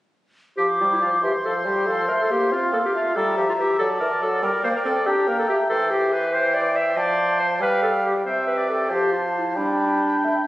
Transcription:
0.57 F3 G4 C5 D6
0.80 G3 F4
0.91 E4
1.01 F3 F4
1.23 E3 G4 C6
1.45 F3 A4
1.65 G3 G4
1.86 F3 A4 C6
2.08 A3 A#4
2.20 A4
2.30 A#3 G4
2.52 C4 F4 F5
2.73 A#3 A4
2.85 G4
2.94 A3 F4
3.15 G3 A4 E5 A#5
3.37 F3 G4
3.49 F4
3.59 E3 G4
3.78 F#3 A4 D5 A5
3.99 E3 A#4
4.22 F#3 A4
4.43 G3 A#4 D5 G5
4.64 A#3 C5
4.76 A#4
4.85 C4 A4
5.06 D4 G4 G5 A#5
5.27 A#3 A#4
5.38 A4
5.48 A3 G4
5.69 E3 A4 C5 G5
5.90 G4
6.12 B4
6.32 C5 G5
6.54 D5
6.76 E5
6.96 F3 C5 D5 A5
7.39 C5
7.60 G3 B4 F5 G5
7.82 A4
8.05 G4
8.25 C3 C5 E5 G5
8.47 B4
8.57 D5
8.69 A4
8.89 F3 G4 C5 A5
9.12 F4
9.35 E4
9.55 G3 D4 G5 B5
10.24 A3

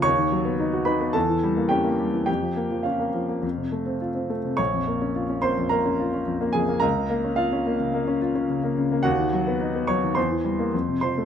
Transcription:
0.02 D#2 C#5 C#6
0.18 D#3
0.32 F#3
0.45 B3
0.59 D#4
0.73 F#4
0.85 D#4 B4 B5
1.01 B3
1.13 E2 A4 A5
1.29 E3
1.43 G3
1.57 A#3
1.69 C#4 G4 G5
1.84 A#3
1.99 G3
2.14 E3
2.26 F2 G4 G5
2.42 F3
2.56 A#3
2.71 F3
2.83 C#4 F4 F5
2.99 A#3
3.14 F3
3.29 A#3
3.43 F2
3.58 C3
3.72 A3
3.86 C4
4.01 F4
4.15 C4
4.29 A3
4.45 C3
4.57 A#1 C#5 C#6
4.73 F2
4.87 A#3
5.01 C#4
5.15 F4
5.29 C#4
5.42 A#3 C5 C6
5.58 F2
5.69 A#3 A#4 A#5
5.85 C#4
6.00 F4
6.14 C#4
6.27 F2
6.41 A#3
6.53 F2 G#4 G#5
6.69 A#3
6.80 C#2 A#4 A#5
6.96 C#3
7.10 A#3
7.24 C#4
7.36 F4 F5
7.53 C#4
7.66 A#3
7.80 C#3
7.94 A#3
8.07 C#4
8.21 F4
8.35 C#4
8.50 C#3
8.64 A#3
8.78 C#3
8.92 A#3
9.03 D#2 F#4 F#5
9.19 D#3
9.33 F#3
9.47 B3
9.61 D#4
9.75 B3
9.87 F#3 C#5 C#6
10.03 D#3
10.15 E2 C5 C6
10.31 E3
10.44 G3
10.59 A#3
10.73 F2
10.89 C3
11.01 F3 C5 C6
11.18 A3

